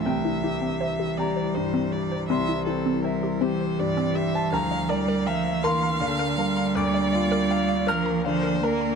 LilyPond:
<<
  \new Staff \with { instrumentName = "Viola" } { \time 6/8 \key c \mixolydian \tempo 4. = 54 e''4. d''8 c''8 d''8 | e''8 a'8 bes'8 c''8 d''8 e''8 | f''8 d''8 e''8 f''4. | d''4. bes'8 c''8 bes'8 | }
  \new Staff \with { instrumentName = "Grand piano" } { \time 6/8 \key c \mixolydian << { g''4. bes''4. | c'''2~ c'''8. a''16 | bes''4. c'''4. | d'''4. f'''4. | } \\ { c,8 g'8 e''8 g'8 g,8 g'8 | c,8 c'8 e''8 g'8 g,8 g'8 | d,8 bes'8 f''8 bes'8 d8 bes'8 | d,8 f'8 f''8 bes'8 d8 bes'8 | } >> }
  \new Staff \with { instrumentName = "Synth pluck" } { \time 6/8 \key c \mixolydian c'16 e'16 e'16 c'16 c''16 g'16 c'16 c''16 g'16 c'16 r16 c''16 | c'16 e'16 e'16 c'16 c''16 g'16 c'16 c''16 g'16 c'16 r16 c''16 | bes'16 d''16 d''16 bes'16 bes''16 f''16 bes'16 bes''16 f''16 bes'16 r16 bes''16 | bes'16 d''16 d''16 bes'16 bes''16 f''16 bes'16 bes''16 f''16 bes'16 r16 bes''16 | }
  \new Staff \with { instrumentName = "Ambient pad" } { \time 6/8 \key c \mixolydian <g e' c''>2.~ | <g e' c''>2. | <bes d' d''>2.~ | <bes d' d''>2. | }
  \new Staff \with { instrumentName = "Cello" } { \clef bass \time 6/8 \key c \mixolydian e2.~ | e4. e4. | f8 g8 f8 e8 d8 g8~ | g4. f8 f8 bes8 | }
>>